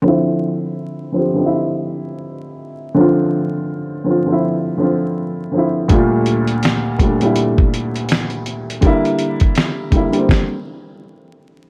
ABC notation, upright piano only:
X:1
M:4/4
L:1/16
Q:"Swing 16ths" 1/4=82
K:Dm
V:1 name="Upright piano" clef=bass
[D,F,CE]4 z2 [D,F,CG] [D,F,C_E=E]6 z3 | [D,F,CF]4 z2 [D,F,CF] [D,F,CE]2 z [D,F,CF]3 z [D,F,CE] z | [D,,B,,G,A,F]4 z2 [D,,B,,G,A,D] [D,,B,,G,A,E]6 z3 | [D,G,B,E]4 z2 [D,G,B,E] [D,G,B,C]2 z6 z |]